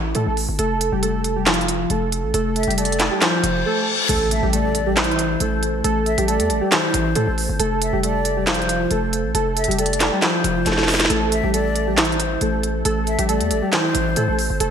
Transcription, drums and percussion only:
0.15 closed hi-hat medium
0.37 open hi-hat medium
0.59 closed hi-hat medium
0.81 closed hi-hat medium
1.03 closed hi-hat medium
1.24 closed hi-hat medium
1.46 snare loud
1.46 clap loud
1.46 closed hi-hat medium
1.54 closed hi-hat medium
1.61 closed hi-hat soft
1.68 closed hi-hat medium
1.90 closed hi-hat medium
2.12 closed hi-hat medium
2.34 closed hi-hat medium
2.56 closed hi-hat medium
2.63 closed hi-hat medium
2.71 closed hi-hat medium
2.78 closed hi-hat medium
2.85 closed hi-hat medium
2.92 closed hi-hat medium
3.00 snare medium
3.00 clap medium
3.00 closed hi-hat medium
3.22 snare loud
3.22 clap loud
3.22 closed hi-hat medium
3.44 closed hi-hat medium
4.09 closed hi-hat medium
4.09 crash loud
4.31 closed hi-hat medium
4.53 closed hi-hat medium
4.75 closed hi-hat medium
4.97 snare loud
4.97 clap loud
4.97 closed hi-hat medium
5.04 closed hi-hat medium
5.11 closed hi-hat soft
5.19 closed hi-hat medium
5.40 closed hi-hat medium
5.63 closed hi-hat medium
5.84 closed hi-hat medium
6.06 closed hi-hat soft
6.18 closed hi-hat medium
6.28 closed hi-hat medium
6.40 closed hi-hat medium
6.50 closed hi-hat medium
6.72 snare loud
6.72 clap loud
6.72 closed hi-hat medium
6.94 closed hi-hat loud
7.15 closed hi-hat medium
7.38 open hi-hat medium
7.60 closed hi-hat medium
7.82 closed hi-hat medium
8.03 closed hi-hat medium
8.25 closed hi-hat medium
8.47 snare loud
8.47 clap loud
8.47 closed hi-hat medium
8.54 closed hi-hat medium
8.62 closed hi-hat soft
8.69 closed hi-hat medium
8.91 closed hi-hat medium
9.13 closed hi-hat medium
9.35 closed hi-hat medium
9.57 closed hi-hat medium
9.64 closed hi-hat medium
9.71 closed hi-hat medium
9.79 closed hi-hat medium
9.86 closed hi-hat medium
9.93 closed hi-hat medium
10.00 snare loud
10.00 clap medium
10.00 closed hi-hat medium
10.22 snare loud
10.22 clap medium
10.22 closed hi-hat medium
10.44 closed hi-hat loud
10.66 snare medium
10.66 closed hi-hat medium
10.72 snare medium
10.78 snare medium
10.83 snare medium
10.88 snare medium
10.88 closed hi-hat soft
10.88 open hi-hat medium
10.94 snare medium
11.00 snare loud
11.00 closed hi-hat medium
11.05 snare loud
11.10 closed hi-hat medium
11.32 closed hi-hat medium
11.54 closed hi-hat medium
11.76 closed hi-hat medium
11.98 snare loud
11.98 clap loud
11.98 closed hi-hat medium
12.05 closed hi-hat medium
12.12 closed hi-hat soft
12.20 closed hi-hat medium
12.41 closed hi-hat medium
12.63 closed hi-hat medium
12.85 closed hi-hat medium
13.07 closed hi-hat medium
13.19 closed hi-hat medium
13.29 closed hi-hat medium
13.41 closed hi-hat medium
13.51 closed hi-hat medium
13.73 snare loud
13.73 clap loud
13.73 closed hi-hat medium
13.95 closed hi-hat loud
14.16 closed hi-hat medium
14.39 open hi-hat medium
14.60 closed hi-hat medium

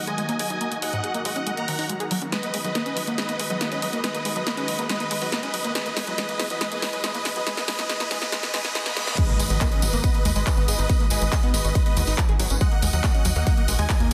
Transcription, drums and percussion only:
0.07 closed hi-hat soft
0.18 closed hi-hat medium
0.29 closed hi-hat medium
0.39 open hi-hat loud
0.50 closed hi-hat soft
0.61 closed hi-hat medium
0.72 closed hi-hat soft
0.82 open hi-hat loud
0.93 closed hi-hat soft
1.04 closed hi-hat medium
1.14 closed hi-hat soft
1.25 open hi-hat loud
1.36 closed hi-hat soft
1.47 closed hi-hat medium
1.57 closed hi-hat soft
1.68 open hi-hat loud
1.79 open hi-hat medium
1.89 closed hi-hat medium
2.00 closed hi-hat soft
2.11 open hi-hat loud
2.22 closed hi-hat soft
2.32 snare soft
2.32 closed hi-hat medium
2.43 closed hi-hat soft
2.54 open hi-hat loud
2.65 closed hi-hat medium
2.75 snare soft
2.75 closed hi-hat medium
2.86 closed hi-hat soft
2.97 open hi-hat loud
3.07 closed hi-hat medium
3.18 snare medium
3.18 closed hi-hat medium
3.29 closed hi-hat medium
3.40 open hi-hat loud
3.50 closed hi-hat soft
3.61 snare medium
3.61 closed hi-hat medium
3.72 closed hi-hat soft
3.82 open hi-hat loud
3.93 closed hi-hat medium
4.04 snare medium
4.04 closed hi-hat medium
4.15 closed hi-hat medium
4.25 open hi-hat loud
4.36 closed hi-hat medium
4.47 snare medium
4.47 closed hi-hat medium
4.57 closed hi-hat medium
4.68 open hi-hat loud
4.79 closed hi-hat medium
4.89 snare medium
4.89 closed hi-hat loud
5.00 closed hi-hat medium
5.11 open hi-hat loud
5.22 open hi-hat medium
5.32 snare medium
5.32 closed hi-hat medium
5.43 closed hi-hat medium
5.54 open hi-hat loud
5.65 closed hi-hat medium
5.75 snare medium
5.75 closed hi-hat medium
5.86 closed hi-hat medium
5.97 snare medium
5.97 open hi-hat loud
6.07 closed hi-hat medium
6.18 snare medium
6.18 closed hi-hat medium
6.29 closed hi-hat medium
6.40 snare medium
6.40 open hi-hat medium
6.50 closed hi-hat medium
6.61 snare medium
6.61 closed hi-hat medium
6.72 closed hi-hat medium
6.82 snare medium
6.82 open hi-hat loud
6.93 closed hi-hat medium
7.04 snare medium
7.04 closed hi-hat medium
7.15 closed hi-hat medium
7.25 snare medium
7.25 open hi-hat loud
7.36 closed hi-hat medium
7.47 snare medium
7.47 closed hi-hat loud
7.57 snare medium
7.57 closed hi-hat medium
7.68 snare loud
7.68 open hi-hat loud
7.79 snare medium
7.79 closed hi-hat medium
7.90 snare medium
7.90 closed hi-hat medium
8.00 snare medium
8.00 closed hi-hat medium
8.11 snare loud
8.11 open hi-hat loud
8.22 snare medium
8.22 closed hi-hat medium
8.32 snare loud
8.32 closed hi-hat loud
8.43 snare medium
8.43 closed hi-hat medium
8.54 snare loud
8.54 open hi-hat loud
8.65 snare medium
8.65 open hi-hat medium
8.75 snare loud
8.75 closed hi-hat loud
8.86 snare loud
8.86 closed hi-hat medium
8.97 snare loud
8.97 open hi-hat loud
9.07 snare loud
9.07 closed hi-hat medium
9.18 kick loud
9.18 closed hi-hat medium
9.18 crash loud
9.18 tambourine soft
9.29 closed hi-hat medium
9.40 open hi-hat loud
9.40 tambourine loud
9.50 closed hi-hat medium
9.50 tambourine soft
9.61 kick loud
9.61 clap loud
9.61 closed hi-hat loud
9.61 tambourine soft
9.72 closed hi-hat medium
9.82 open hi-hat loud
9.82 tambourine loud
9.93 closed hi-hat medium
9.93 tambourine medium
10.04 kick loud
10.04 closed hi-hat loud
10.04 tambourine soft
10.15 closed hi-hat medium
10.25 open hi-hat loud
10.25 tambourine medium
10.35 closed hi-hat medium
10.35 tambourine medium
10.47 kick loud
10.47 clap loud
10.47 closed hi-hat loud
10.47 tambourine soft
10.57 closed hi-hat medium
10.68 open hi-hat loud
10.68 tambourine loud
10.78 closed hi-hat medium
10.78 tambourine medium
10.89 kick loud
10.89 closed hi-hat medium
10.89 tambourine soft
11.00 closed hi-hat medium
11.10 open hi-hat loud
11.10 tambourine loud
11.21 closed hi-hat medium
11.21 tambourine soft
11.32 kick loud
11.32 clap loud
11.32 closed hi-hat medium
11.32 tambourine soft
11.43 closed hi-hat medium
11.54 open hi-hat loud
11.54 tambourine loud
11.64 closed hi-hat medium
11.64 tambourine medium
11.75 kick loud
11.75 closed hi-hat loud
11.75 tambourine soft
11.86 closed hi-hat medium
11.97 open hi-hat loud
11.97 tambourine loud
12.07 open hi-hat medium
12.07 tambourine medium
12.18 kick loud
12.18 clap loud
12.18 closed hi-hat medium
12.18 tambourine soft
12.29 closed hi-hat medium
12.39 open hi-hat loud
12.39 tambourine medium
12.50 closed hi-hat medium
12.50 tambourine medium
12.61 kick loud
12.61 closed hi-hat medium
12.61 tambourine soft
12.72 closed hi-hat soft
12.82 open hi-hat loud
12.82 tambourine loud
12.93 closed hi-hat medium
12.93 tambourine medium
13.04 kick loud
13.04 clap loud
13.04 closed hi-hat medium
13.04 tambourine soft
13.15 closed hi-hat medium
13.25 open hi-hat loud
13.25 tambourine medium
13.35 closed hi-hat medium
13.35 tambourine medium
13.47 kick loud
13.47 closed hi-hat loud
13.47 tambourine soft
13.57 closed hi-hat medium
13.68 open hi-hat loud
13.68 tambourine loud
13.78 closed hi-hat medium
13.78 tambourine medium
13.89 kick loud
13.89 clap loud
13.89 closed hi-hat medium
13.89 tambourine soft
14.00 closed hi-hat medium

